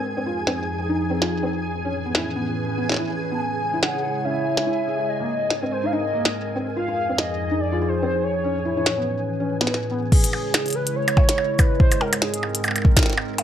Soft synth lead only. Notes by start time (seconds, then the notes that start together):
3.34 A5
3.41 G#5
3.83 F#5
4.25 E5
5.09 D#5
5.72 C5
5.85 F5
5.93 D#5
6.76 F5
7.18 D#5
7.60 D5
7.88 C5
8.02 C5
8.23 C#5
10.12 G#4
10.75 B4
10.96 C#5
11.59 B4
11.80 C5
12.01 A#4
12.22 G#4